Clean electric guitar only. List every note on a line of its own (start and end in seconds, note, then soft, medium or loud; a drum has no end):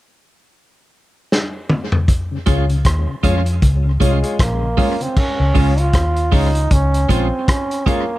2.46 2.64 G#3 medium
2.46 2.65 C#4 medium
2.46 2.65 F4 loud
3.23 3.41 G#3 medium
3.23 3.42 C#4 medium
3.23 3.42 F4 loud
3.46 muted clean electric guitar stroke soft
4.00 4.18 G#3 medium
4.00 4.19 C#4 medium
4.00 4.19 F4 medium
4.77 4.95 G#3 medium
4.77 4.96 C#4 medium
4.77 4.96 F4 loud
5.00 muted clean electric guitar stroke soft
5.55 5.73 G#3 medium
5.55 5.73 C#4 medium
5.55 5.73 F4 medium
6.32 6.50 G#3 medium
6.32 6.50 C#4 medium
6.32 6.50 F4 medium
6.55 muted clean electric guitar stroke soft
7.09 7.27 G#3 medium
7.09 7.27 C#4 medium
7.09 7.28 F4 loud
7.86 8.04 G#3 medium
7.86 8.04 C#4 medium
7.86 8.05 F4 loud
8.10 muted clean electric guitar stroke soft